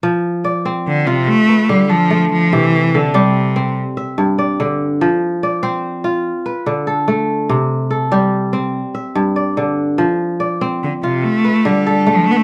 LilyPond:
<<
  \new Staff \with { instrumentName = "Kora" } { \time 12/8 \key f \lydian \tempo 4. = 96 r4 d''4. r4 b'4 a'4. | r4 a'8 g'4. r8 e''4 d''4. | r4 d''8 c''4. r8 b'4 a'4. | r4 a'8 g'4. r8 e''4 d''4. |
r4 d''4. r4 b'4 a'4. | }
  \new Staff \with { instrumentName = "Kora" } { \clef bass \time 12/8 \key f \lydian f4 r8 c'4 f'8 r4 d4 a4 | c4 r8 g4 c'8 r4 g,4 d4 | f4 r8 c'4 f'8 r4 d4 a4 | c4 r8 g4 c'8 r4 g,4 d4 |
f4 r8 c'4 f'8 r4 d4 a4 | }
  \new Staff \with { instrumentName = "Cello" } { \clef bass \time 12/8 \key f \lydian r2 d8 c8 a4 g8 f4 f8 | e4 d8 c4. r2. | r1. | r1. |
r2 d8 c8 a4 g4~ g16 f16 a32 b32 a16 | }
>>